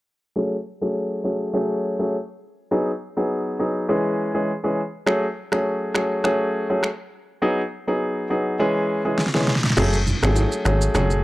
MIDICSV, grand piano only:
0, 0, Header, 1, 2, 480
1, 0, Start_track
1, 0, Tempo, 588235
1, 294, Time_signature, 4, 2, 24, 8
1, 9171, End_track
2, 0, Start_track
2, 0, Title_t, "Grand piano"
2, 0, Program_c, 0, 0
2, 292, Note_on_c, 0, 54, 86
2, 293, Note_on_c, 0, 57, 82
2, 295, Note_on_c, 0, 61, 79
2, 296, Note_on_c, 0, 68, 97
2, 441, Note_off_c, 0, 54, 0
2, 442, Note_off_c, 0, 57, 0
2, 443, Note_off_c, 0, 61, 0
2, 443, Note_off_c, 0, 68, 0
2, 664, Note_on_c, 0, 54, 72
2, 666, Note_on_c, 0, 57, 64
2, 667, Note_on_c, 0, 61, 62
2, 669, Note_on_c, 0, 68, 77
2, 987, Note_off_c, 0, 54, 0
2, 988, Note_off_c, 0, 57, 0
2, 988, Note_off_c, 0, 61, 0
2, 989, Note_off_c, 0, 68, 0
2, 1010, Note_on_c, 0, 54, 68
2, 1012, Note_on_c, 0, 57, 59
2, 1014, Note_on_c, 0, 61, 61
2, 1016, Note_on_c, 0, 68, 70
2, 1235, Note_off_c, 0, 54, 0
2, 1236, Note_off_c, 0, 57, 0
2, 1237, Note_off_c, 0, 61, 0
2, 1237, Note_off_c, 0, 68, 0
2, 1252, Note_on_c, 0, 54, 83
2, 1254, Note_on_c, 0, 57, 79
2, 1256, Note_on_c, 0, 61, 75
2, 1257, Note_on_c, 0, 68, 94
2, 1593, Note_off_c, 0, 54, 0
2, 1594, Note_off_c, 0, 57, 0
2, 1595, Note_off_c, 0, 61, 0
2, 1596, Note_off_c, 0, 68, 0
2, 1625, Note_on_c, 0, 54, 72
2, 1626, Note_on_c, 0, 57, 66
2, 1628, Note_on_c, 0, 61, 65
2, 1629, Note_on_c, 0, 68, 77
2, 1754, Note_off_c, 0, 54, 0
2, 1754, Note_off_c, 0, 57, 0
2, 1755, Note_off_c, 0, 61, 0
2, 1756, Note_off_c, 0, 68, 0
2, 2212, Note_on_c, 0, 54, 87
2, 2213, Note_on_c, 0, 59, 77
2, 2215, Note_on_c, 0, 63, 78
2, 2216, Note_on_c, 0, 68, 95
2, 2362, Note_off_c, 0, 54, 0
2, 2362, Note_off_c, 0, 59, 0
2, 2363, Note_off_c, 0, 63, 0
2, 2363, Note_off_c, 0, 68, 0
2, 2583, Note_on_c, 0, 54, 70
2, 2585, Note_on_c, 0, 59, 64
2, 2586, Note_on_c, 0, 63, 62
2, 2589, Note_on_c, 0, 68, 81
2, 2907, Note_off_c, 0, 54, 0
2, 2908, Note_off_c, 0, 59, 0
2, 2908, Note_off_c, 0, 63, 0
2, 2909, Note_off_c, 0, 68, 0
2, 2932, Note_on_c, 0, 54, 67
2, 2933, Note_on_c, 0, 59, 62
2, 2934, Note_on_c, 0, 63, 65
2, 2936, Note_on_c, 0, 68, 72
2, 3155, Note_off_c, 0, 54, 0
2, 3156, Note_off_c, 0, 59, 0
2, 3157, Note_off_c, 0, 63, 0
2, 3158, Note_off_c, 0, 68, 0
2, 3171, Note_on_c, 0, 52, 86
2, 3173, Note_on_c, 0, 56, 77
2, 3174, Note_on_c, 0, 61, 78
2, 3176, Note_on_c, 0, 68, 96
2, 3513, Note_off_c, 0, 52, 0
2, 3514, Note_off_c, 0, 56, 0
2, 3514, Note_off_c, 0, 61, 0
2, 3515, Note_off_c, 0, 68, 0
2, 3543, Note_on_c, 0, 52, 70
2, 3545, Note_on_c, 0, 56, 66
2, 3546, Note_on_c, 0, 61, 63
2, 3547, Note_on_c, 0, 68, 82
2, 3673, Note_off_c, 0, 52, 0
2, 3674, Note_off_c, 0, 56, 0
2, 3674, Note_off_c, 0, 61, 0
2, 3675, Note_off_c, 0, 68, 0
2, 3783, Note_on_c, 0, 52, 72
2, 3785, Note_on_c, 0, 56, 66
2, 3787, Note_on_c, 0, 61, 67
2, 3788, Note_on_c, 0, 68, 78
2, 3913, Note_off_c, 0, 52, 0
2, 3914, Note_off_c, 0, 56, 0
2, 3914, Note_off_c, 0, 61, 0
2, 3915, Note_off_c, 0, 68, 0
2, 4131, Note_on_c, 0, 54, 88
2, 4133, Note_on_c, 0, 57, 84
2, 4135, Note_on_c, 0, 61, 78
2, 4136, Note_on_c, 0, 68, 100
2, 4281, Note_off_c, 0, 54, 0
2, 4282, Note_off_c, 0, 57, 0
2, 4283, Note_off_c, 0, 61, 0
2, 4283, Note_off_c, 0, 68, 0
2, 4503, Note_on_c, 0, 54, 69
2, 4504, Note_on_c, 0, 57, 65
2, 4506, Note_on_c, 0, 61, 67
2, 4507, Note_on_c, 0, 68, 76
2, 4826, Note_off_c, 0, 54, 0
2, 4827, Note_off_c, 0, 57, 0
2, 4828, Note_off_c, 0, 61, 0
2, 4828, Note_off_c, 0, 68, 0
2, 4852, Note_on_c, 0, 54, 71
2, 4854, Note_on_c, 0, 57, 63
2, 4855, Note_on_c, 0, 61, 64
2, 4857, Note_on_c, 0, 68, 76
2, 5076, Note_off_c, 0, 54, 0
2, 5077, Note_off_c, 0, 57, 0
2, 5077, Note_off_c, 0, 61, 0
2, 5078, Note_off_c, 0, 68, 0
2, 5092, Note_on_c, 0, 54, 86
2, 5094, Note_on_c, 0, 57, 79
2, 5096, Note_on_c, 0, 61, 84
2, 5097, Note_on_c, 0, 68, 97
2, 5433, Note_off_c, 0, 54, 0
2, 5434, Note_off_c, 0, 57, 0
2, 5435, Note_off_c, 0, 61, 0
2, 5436, Note_off_c, 0, 68, 0
2, 5464, Note_on_c, 0, 54, 74
2, 5466, Note_on_c, 0, 57, 66
2, 5467, Note_on_c, 0, 61, 69
2, 5469, Note_on_c, 0, 68, 79
2, 5593, Note_off_c, 0, 54, 0
2, 5594, Note_off_c, 0, 57, 0
2, 5595, Note_off_c, 0, 61, 0
2, 5595, Note_off_c, 0, 68, 0
2, 6052, Note_on_c, 0, 54, 91
2, 6054, Note_on_c, 0, 59, 79
2, 6055, Note_on_c, 0, 63, 84
2, 6057, Note_on_c, 0, 68, 98
2, 6202, Note_off_c, 0, 54, 0
2, 6202, Note_off_c, 0, 59, 0
2, 6203, Note_off_c, 0, 63, 0
2, 6204, Note_off_c, 0, 68, 0
2, 6425, Note_on_c, 0, 54, 70
2, 6426, Note_on_c, 0, 59, 65
2, 6428, Note_on_c, 0, 63, 65
2, 6430, Note_on_c, 0, 68, 83
2, 6747, Note_off_c, 0, 54, 0
2, 6748, Note_off_c, 0, 59, 0
2, 6749, Note_off_c, 0, 63, 0
2, 6750, Note_off_c, 0, 68, 0
2, 6772, Note_on_c, 0, 54, 69
2, 6774, Note_on_c, 0, 59, 61
2, 6776, Note_on_c, 0, 63, 65
2, 6777, Note_on_c, 0, 68, 76
2, 6996, Note_off_c, 0, 54, 0
2, 6997, Note_off_c, 0, 59, 0
2, 6998, Note_off_c, 0, 63, 0
2, 6998, Note_off_c, 0, 68, 0
2, 7012, Note_on_c, 0, 52, 86
2, 7013, Note_on_c, 0, 56, 79
2, 7015, Note_on_c, 0, 61, 83
2, 7017, Note_on_c, 0, 68, 100
2, 7353, Note_off_c, 0, 52, 0
2, 7354, Note_off_c, 0, 56, 0
2, 7355, Note_off_c, 0, 61, 0
2, 7356, Note_off_c, 0, 68, 0
2, 7383, Note_on_c, 0, 52, 72
2, 7384, Note_on_c, 0, 56, 69
2, 7385, Note_on_c, 0, 61, 67
2, 7388, Note_on_c, 0, 68, 82
2, 7513, Note_off_c, 0, 52, 0
2, 7513, Note_off_c, 0, 56, 0
2, 7514, Note_off_c, 0, 61, 0
2, 7515, Note_off_c, 0, 68, 0
2, 7623, Note_on_c, 0, 52, 74
2, 7624, Note_on_c, 0, 56, 66
2, 7626, Note_on_c, 0, 61, 67
2, 7627, Note_on_c, 0, 68, 82
2, 7752, Note_off_c, 0, 52, 0
2, 7753, Note_off_c, 0, 56, 0
2, 7754, Note_off_c, 0, 61, 0
2, 7754, Note_off_c, 0, 68, 0
2, 7970, Note_on_c, 0, 54, 90
2, 7973, Note_on_c, 0, 57, 82
2, 7974, Note_on_c, 0, 61, 83
2, 7976, Note_on_c, 0, 68, 98
2, 8121, Note_off_c, 0, 54, 0
2, 8122, Note_off_c, 0, 57, 0
2, 8122, Note_off_c, 0, 61, 0
2, 8123, Note_off_c, 0, 68, 0
2, 8344, Note_on_c, 0, 54, 72
2, 8346, Note_on_c, 0, 57, 66
2, 8348, Note_on_c, 0, 61, 66
2, 8348, Note_on_c, 0, 68, 81
2, 8667, Note_off_c, 0, 54, 0
2, 8668, Note_off_c, 0, 57, 0
2, 8669, Note_off_c, 0, 61, 0
2, 8669, Note_off_c, 0, 68, 0
2, 8690, Note_on_c, 0, 54, 70
2, 8692, Note_on_c, 0, 57, 62
2, 8694, Note_on_c, 0, 61, 67
2, 8695, Note_on_c, 0, 68, 80
2, 8915, Note_off_c, 0, 54, 0
2, 8916, Note_off_c, 0, 57, 0
2, 8917, Note_off_c, 0, 61, 0
2, 8917, Note_off_c, 0, 68, 0
2, 8930, Note_on_c, 0, 54, 87
2, 8931, Note_on_c, 0, 57, 79
2, 8934, Note_on_c, 0, 61, 82
2, 8935, Note_on_c, 0, 68, 100
2, 9171, Note_off_c, 0, 54, 0
2, 9171, Note_off_c, 0, 57, 0
2, 9171, Note_off_c, 0, 61, 0
2, 9171, Note_off_c, 0, 68, 0
2, 9171, End_track
0, 0, End_of_file